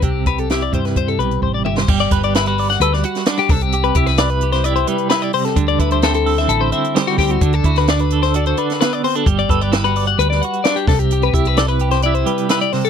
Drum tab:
CC |----------------|x---------------|----------------|----------------|
HH |x-xxxxxxxxxx----|-xxxxxoxx-xxxxox|xxxxxxxxxxxxxxox|xxxxxxoxx-xxxxox|
SD |----o--o-------o|----o--o-o-ooo--|---oo--o----o--o|----o--o----ooo-|
T2 |--------------o-|----------------|----------------|----------------|
BD |o-o---o-o---o---|o-o-----------o-|--o-------------|o-o-----------o-|

CC |----------------|----------------|----------------|
HH |xxxxxxxxxxxxxxox|xxxxxxoxx-xxxxox|xxxxxxxxxxxxxxox|
SD |---oo--o---oo---|----o----o--o-o-|----o--o----o-o-|
T2 |----------------|----------------|----------------|
BD |o-o-------------|o-o-----------o-|--o-------------|